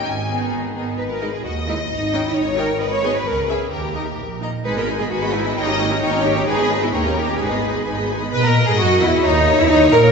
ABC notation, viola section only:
X:1
M:2/4
L:1/16
Q:1/4=131
K:G#m
V:1 name="Viola section"
z2 [D,B,]4 [D,B,]2 | z2 [G,D]2 z2 [G,D]2 | z2 [CD]2 z2 [CD]2 | z2 [B,G]2 z2 [CG]2 |
z2 [A,D]2 z2 [A,D]2 | [G,D] [B,G] [G,D] [B,G] [G,D] [B,G] [G,D] [B,G] | [A,D] [C=G] [A,D] [CG] [A,D] [CG] [A,D] [CG] | [G,D] [B,G] [G,D] [B,G] [A,D] [C=G] [A,D] [CG] |
[G,D] [B,G] [G,D] [B,G] [G,D] [B,G] [G,D] [B,G] | B A2 G F2 E2 | D3 E D2 A2 |]